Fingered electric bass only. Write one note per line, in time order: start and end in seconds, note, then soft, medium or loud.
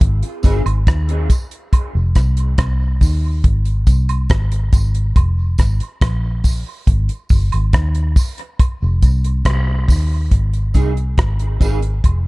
0.02 0.21 G#1 loud
0.44 0.64 G1 medium
0.66 0.85 G#1 medium
0.88 1.27 D#2 medium
1.95 2.14 F1 loud
2.17 2.56 C2 loud
2.59 2.99 C2 loud
3.02 3.41 D#2 medium
3.45 3.84 G#1 loud
3.88 4.27 C2 medium
4.31 4.70 G#1 medium
4.73 5.13 G#1 loud
5.17 5.56 F1 medium
5.59 5.79 G#1 loud
6.02 6.63 A#1 medium
6.88 7.08 G#1 loud
7.31 7.51 G1 medium
7.54 7.73 G#1 medium
7.75 8.14 D#2 loud
8.82 9.01 F1 loud
9.03 9.43 C2 loud
9.46 9.86 C2 medium
9.89 10.29 D#2 medium
10.32 10.71 G#1 medium
10.75 11.15 C2 medium
11.19 11.58 G#1 medium
11.61 12.01 G#1 medium
12.05 12.28 F1 medium